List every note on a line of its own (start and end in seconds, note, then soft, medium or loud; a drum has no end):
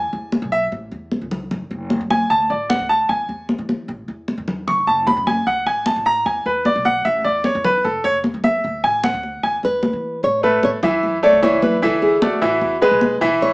0.00 0.12 E2 medium
0.00 0.48 G#5 medium
0.13 0.41 E2 medium
0.13 high conga soft
0.32 high conga medium
0.42 0.70 B1 loud
0.52 0.64 E5 loud
0.72 0.91 A1 medium
0.72 high conga soft
0.92 1.20 E2 medium
0.92 high conga soft
1.12 high conga medium
1.21 1.50 C#2 medium
1.31 low conga medium
1.51 1.70 F#1 medium
1.51 high conga soft
1.51 low conga medium
1.71 1.99 F#1 medium
1.71 high conga soft
1.90 high conga medium
2.01 2.29 F#2 medium
2.10 2.30 G#5 loud
2.10 high conga medium
2.30 2.49 D2 medium
2.30 2.49 A5 loud
2.30 high conga soft
2.50 2.78 A1 medium
2.50 2.69 D5 medium
2.50 high conga soft
2.70 2.89 F#5 medium
2.70 high conga medium
2.79 3.08 D2 medium
2.89 3.09 A5 loud
2.89 high conga soft
3.09 3.28 E2 medium
3.09 3.46 G#5 medium
3.09 high conga soft
3.29 3.57 E2 medium
3.29 high conga soft
3.49 high conga medium
3.58 3.87 E3 loud
3.69 high conga medium
3.88 4.07 A1 medium
3.88 high conga soft
4.08 4.36 E2 medium
4.08 high conga soft
4.28 high conga medium
4.38 4.66 E2 medium
4.48 low conga medium
4.67 4.86 F#1 medium
4.67 4.87 C#6 medium
4.67 high conga soft
4.67 low conga medium
4.87 5.15 F#1 medium
4.87 5.06 A5 medium
4.87 high conga soft
5.07 5.26 B5 loud
5.07 high conga medium
5.17 5.45 F#2 loud
5.27 5.46 G#5 medium
5.27 high conga medium
5.46 5.65 D2 medium
5.46 5.66 F#5 medium
5.46 high conga soft
5.66 5.95 A1 medium
5.66 5.86 G#5 medium
5.66 high conga soft
5.86 6.05 A5 medium
5.86 high conga medium
5.96 6.24 A1 medium
6.06 6.25 A#5 loud
6.06 high conga soft
6.26 6.45 E2 medium
6.26 6.45 G#5 medium
6.26 high conga soft
6.46 6.74 E2 medium
6.46 6.65 B4 medium
6.46 high conga soft
6.65 6.85 D5 medium
6.65 high conga medium
6.75 7.04 B1 loud
6.85 7.05 F#5 loud
6.85 high conga medium
7.05 7.24 A1 loud
7.05 7.24 E5 medium
7.05 high conga soft
7.24 7.53 E2 medium
7.24 7.44 D5 medium
7.24 high conga soft
7.44 7.64 C#5 medium
7.44 high conga medium
7.55 7.83 E2 loud
7.64 7.84 B4 medium
7.64 low conga medium
7.84 8.03 F#1 loud
7.84 8.04 A4 medium
7.84 high conga soft
8.04 8.33 F#1 medium
8.04 8.16 C#5 loud
8.04 high conga soft
8.24 high conga medium
8.34 8.62 F#2 medium
8.44 8.81 E5 medium
8.44 high conga medium
8.64 8.83 D2 medium
8.64 high conga soft
8.84 9.12 A1 medium
8.84 9.03 G#5 loud
8.84 high conga soft
9.04 9.41 F#5 medium
9.04 high conga medium
9.14 9.42 D2 medium
9.23 high conga soft
9.43 9.62 E2 medium
9.43 9.55 G#5 medium
9.43 high conga soft
9.63 9.92 E2 medium
9.63 10.24 B4 loud
9.63 high conga soft
9.83 high conga medium
9.93 10.21 E3 medium
10.23 10.61 A2 medium
10.23 10.43 C#5 loud
10.23 high conga soft
10.43 10.76 A3 medium
10.43 10.76 A4 medium
10.43 10.76 B4 medium
10.43 10.64 B4 medium
10.43 high conga soft
10.63 10.72 A2 medium
10.63 10.70 C#5 loud
10.63 high conga medium
10.83 11.02 E2 loud
10.83 11.15 E3 medium
10.83 11.16 E4 medium
10.83 11.16 E5 medium
10.83 11.23 E5 loud
10.83 low conga medium
11.03 11.31 F#2 medium
11.03 high conga soft
11.23 11.39 A3 medium
11.23 11.39 A4 medium
11.23 11.39 C#5 medium
11.23 11.43 D5 loud
11.23 high conga soft
11.32 11.61 C#2 medium
11.42 11.75 E3 medium
11.42 11.75 E4 medium
11.42 11.61 C#5 loud
11.42 11.75 E5 medium
11.42 high conga medium
11.62 11.84 F#3 medium
11.62 11.83 B4 loud
11.62 high conga medium
11.82 12.20 D2 medium
11.82 12.15 E3 medium
11.82 12.15 E4 medium
11.82 12.02 A4 loud
11.82 12.15 E5 medium
11.82 high conga soft
12.02 12.22 G#4 medium
12.02 high conga soft
12.22 12.31 D2 medium
12.22 12.38 A3 medium
12.22 12.84 F#4 medium
12.22 12.38 A4 medium
12.22 12.38 D5 medium
12.22 high conga loud
12.41 12.60 A1 loud
12.41 12.74 E3 medium
12.41 12.74 E4 medium
12.41 12.75 E5 medium
12.41 high conga soft
12.61 12.90 E2 loud
12.61 high conga soft
12.81 13.14 G#3 medium
12.81 13.14 G#4 medium
12.81 13.19 B4 medium
12.81 13.14 B4 medium
12.81 high conga soft
12.91 13.19 B1 medium
13.01 high conga medium
13.21 13.41 B1 medium
13.21 13.53 E3 medium
13.21 13.53 E4 medium
13.21 13.53 E5 loud
13.41 13.53 A1 medium
13.41 13.53 C#5 loud
13.41 high conga soft